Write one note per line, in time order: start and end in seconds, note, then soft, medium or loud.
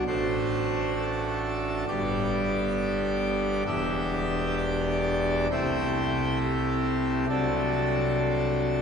0.07 1.84 A1 medium
0.07 1.84 A2 medium
0.07 1.84 A3 medium
0.07 1.84 D4 medium
0.07 1.84 F#4 medium
0.07 0.94 C5 loud
0.96 1.86 A4 loud
1.88 3.63 G1 medium
1.88 3.63 G2 medium
1.88 3.63 B3 medium
1.88 3.63 D4 medium
1.88 3.63 G4 medium
1.88 3.63 D5 loud
3.67 5.47 E1 medium
3.67 5.47 E2 medium
3.67 5.47 B3 medium
3.67 5.47 D4 medium
3.67 5.47 G4 medium
3.67 4.55 E5 loud
4.57 5.48 D5 loud
5.51 7.25 C2 medium
5.51 7.25 C3 medium
5.51 7.25 A3 medium
5.51 7.26 C4 medium
5.51 7.25 E4 medium
5.51 6.38 G5 loud
6.41 7.27 G4 loud
7.29 8.82 C2 medium
7.29 8.82 C3 medium
7.29 8.82 F#3 medium
7.29 8.82 A3 medium
7.29 8.82 D4 medium
7.29 8.17 A4 loud
8.19 8.82 A4 loud